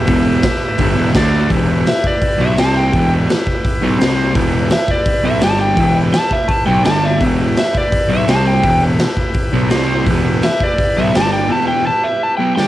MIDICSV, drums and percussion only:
0, 0, Header, 1, 2, 480
1, 0, Start_track
1, 0, Key_signature, 1, "minor"
1, 0, Tempo, 356718
1, 110, Time_signature, 4, 2, 24, 8
1, 17058, End_track
2, 0, Start_track
2, 0, Title_t, "Drums"
2, 94, Note_on_c, 9, 46, 61
2, 107, Note_on_c, 9, 36, 110
2, 228, Note_off_c, 9, 46, 0
2, 241, Note_off_c, 9, 36, 0
2, 573, Note_on_c, 9, 46, 57
2, 584, Note_on_c, 9, 36, 118
2, 587, Note_on_c, 9, 38, 114
2, 708, Note_off_c, 9, 46, 0
2, 719, Note_off_c, 9, 36, 0
2, 722, Note_off_c, 9, 38, 0
2, 1047, Note_on_c, 9, 46, 63
2, 1062, Note_on_c, 9, 36, 111
2, 1182, Note_off_c, 9, 46, 0
2, 1197, Note_off_c, 9, 36, 0
2, 1539, Note_on_c, 9, 46, 64
2, 1544, Note_on_c, 9, 36, 114
2, 1552, Note_on_c, 9, 38, 110
2, 1674, Note_off_c, 9, 46, 0
2, 1678, Note_off_c, 9, 36, 0
2, 1687, Note_off_c, 9, 38, 0
2, 2023, Note_on_c, 9, 36, 107
2, 2028, Note_on_c, 9, 46, 58
2, 2158, Note_off_c, 9, 36, 0
2, 2163, Note_off_c, 9, 46, 0
2, 2506, Note_on_c, 9, 46, 58
2, 2520, Note_on_c, 9, 38, 100
2, 2641, Note_off_c, 9, 46, 0
2, 2654, Note_off_c, 9, 38, 0
2, 2743, Note_on_c, 9, 36, 87
2, 2878, Note_off_c, 9, 36, 0
2, 2979, Note_on_c, 9, 46, 55
2, 2982, Note_on_c, 9, 36, 105
2, 3114, Note_off_c, 9, 46, 0
2, 3117, Note_off_c, 9, 36, 0
2, 3462, Note_on_c, 9, 46, 52
2, 3476, Note_on_c, 9, 38, 116
2, 3597, Note_off_c, 9, 46, 0
2, 3611, Note_off_c, 9, 38, 0
2, 3946, Note_on_c, 9, 46, 48
2, 3947, Note_on_c, 9, 36, 101
2, 4081, Note_off_c, 9, 46, 0
2, 4082, Note_off_c, 9, 36, 0
2, 4431, Note_on_c, 9, 46, 52
2, 4444, Note_on_c, 9, 38, 101
2, 4565, Note_off_c, 9, 46, 0
2, 4579, Note_off_c, 9, 38, 0
2, 4666, Note_on_c, 9, 36, 84
2, 4801, Note_off_c, 9, 36, 0
2, 4907, Note_on_c, 9, 36, 110
2, 4917, Note_on_c, 9, 46, 54
2, 5041, Note_off_c, 9, 36, 0
2, 5051, Note_off_c, 9, 46, 0
2, 5390, Note_on_c, 9, 46, 60
2, 5403, Note_on_c, 9, 38, 104
2, 5524, Note_off_c, 9, 46, 0
2, 5538, Note_off_c, 9, 38, 0
2, 5857, Note_on_c, 9, 36, 103
2, 5860, Note_on_c, 9, 46, 57
2, 5992, Note_off_c, 9, 36, 0
2, 5994, Note_off_c, 9, 46, 0
2, 6323, Note_on_c, 9, 46, 58
2, 6337, Note_on_c, 9, 38, 110
2, 6458, Note_off_c, 9, 46, 0
2, 6471, Note_off_c, 9, 38, 0
2, 6569, Note_on_c, 9, 36, 90
2, 6704, Note_off_c, 9, 36, 0
2, 6802, Note_on_c, 9, 46, 61
2, 6807, Note_on_c, 9, 36, 109
2, 6937, Note_off_c, 9, 46, 0
2, 6942, Note_off_c, 9, 36, 0
2, 7277, Note_on_c, 9, 46, 55
2, 7290, Note_on_c, 9, 38, 109
2, 7411, Note_off_c, 9, 46, 0
2, 7425, Note_off_c, 9, 38, 0
2, 7764, Note_on_c, 9, 36, 103
2, 7764, Note_on_c, 9, 46, 52
2, 7898, Note_off_c, 9, 46, 0
2, 7899, Note_off_c, 9, 36, 0
2, 8246, Note_on_c, 9, 46, 49
2, 8260, Note_on_c, 9, 38, 109
2, 8381, Note_off_c, 9, 46, 0
2, 8394, Note_off_c, 9, 38, 0
2, 8489, Note_on_c, 9, 36, 86
2, 8623, Note_off_c, 9, 36, 0
2, 8725, Note_on_c, 9, 46, 55
2, 8728, Note_on_c, 9, 36, 108
2, 8860, Note_off_c, 9, 46, 0
2, 8863, Note_off_c, 9, 36, 0
2, 9213, Note_on_c, 9, 46, 57
2, 9226, Note_on_c, 9, 38, 109
2, 9347, Note_off_c, 9, 46, 0
2, 9361, Note_off_c, 9, 38, 0
2, 9695, Note_on_c, 9, 46, 56
2, 9699, Note_on_c, 9, 36, 106
2, 9830, Note_off_c, 9, 46, 0
2, 9833, Note_off_c, 9, 36, 0
2, 10181, Note_on_c, 9, 46, 58
2, 10194, Note_on_c, 9, 38, 100
2, 10315, Note_off_c, 9, 46, 0
2, 10329, Note_off_c, 9, 38, 0
2, 10425, Note_on_c, 9, 36, 88
2, 10560, Note_off_c, 9, 36, 0
2, 10661, Note_on_c, 9, 46, 61
2, 10663, Note_on_c, 9, 36, 111
2, 10795, Note_off_c, 9, 46, 0
2, 10798, Note_off_c, 9, 36, 0
2, 11140, Note_on_c, 9, 46, 61
2, 11154, Note_on_c, 9, 38, 113
2, 11275, Note_off_c, 9, 46, 0
2, 11288, Note_off_c, 9, 38, 0
2, 11615, Note_on_c, 9, 46, 55
2, 11620, Note_on_c, 9, 36, 109
2, 11750, Note_off_c, 9, 46, 0
2, 11755, Note_off_c, 9, 36, 0
2, 12094, Note_on_c, 9, 46, 53
2, 12107, Note_on_c, 9, 38, 110
2, 12229, Note_off_c, 9, 46, 0
2, 12242, Note_off_c, 9, 38, 0
2, 12337, Note_on_c, 9, 36, 86
2, 12472, Note_off_c, 9, 36, 0
2, 12563, Note_on_c, 9, 46, 57
2, 12577, Note_on_c, 9, 36, 112
2, 12698, Note_off_c, 9, 46, 0
2, 12712, Note_off_c, 9, 36, 0
2, 13053, Note_on_c, 9, 46, 56
2, 13067, Note_on_c, 9, 38, 109
2, 13188, Note_off_c, 9, 46, 0
2, 13201, Note_off_c, 9, 38, 0
2, 13544, Note_on_c, 9, 36, 104
2, 13545, Note_on_c, 9, 46, 55
2, 13679, Note_off_c, 9, 36, 0
2, 13679, Note_off_c, 9, 46, 0
2, 14027, Note_on_c, 9, 46, 55
2, 14040, Note_on_c, 9, 38, 104
2, 14161, Note_off_c, 9, 46, 0
2, 14175, Note_off_c, 9, 38, 0
2, 14270, Note_on_c, 9, 36, 90
2, 14404, Note_off_c, 9, 36, 0
2, 14511, Note_on_c, 9, 36, 113
2, 14515, Note_on_c, 9, 46, 64
2, 14646, Note_off_c, 9, 36, 0
2, 14649, Note_off_c, 9, 46, 0
2, 14995, Note_on_c, 9, 46, 56
2, 15009, Note_on_c, 9, 38, 110
2, 15130, Note_off_c, 9, 46, 0
2, 15143, Note_off_c, 9, 38, 0
2, 16920, Note_on_c, 9, 38, 64
2, 17054, Note_off_c, 9, 38, 0
2, 17058, End_track
0, 0, End_of_file